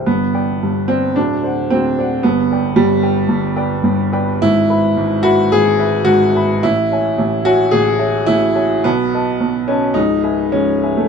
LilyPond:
\new Staff \with { instrumentName = "Grand piano" } { \time 4/4 \key g \mixolydian \tempo 4 = 108 << { <g,, g,>8 <d'' g''>8 <g,, g,>8 <d'' g''>8 <d,, d,>8 <c'' d'' fis''>8 <d,, d,>8 <c'' d'' fis''>8 | <g,, g,>8 <b' d'' g''>8 <g,, g,>8 <b' d'' g''>8 <g,, g,>8 <b' d'' g''>8 <g,, g,>8 <b' d'' g''>8 | \key e \major <gis,, gis,>8 <b' e'' b''>8 <gis,, gis,>8 <b' e'' b''>8 <gis,, gis,>8 <b' e'' b''>8 <gis,, gis,>8 <b' e'' b''>8 | <a,, a,>8 <cis'' e'' gis''>8 <a,, a,>8 <cis'' e'' gis''>8 <a,, a,>8 <cis'' e'' gis''>8 <a,, a,>8 <cis'' e'' gis''>8 |
<b,, b,>8 <b' dis'' a''>8 <b,, b,>8 <b' dis'' a''>8 <cis,, cis,>8 <b' e'' gis''>8 <cis,, cis,>8 <b' e'' gis''>8 | } \\ { b4. c'8 d'4 c'4 | b4 g2. | e'4. fis'8 gis'4 fis'4 | e'4. fis'8 gis'4 e'4 |
b4. cis'8 dis'4 cis'8. a16 | } >> }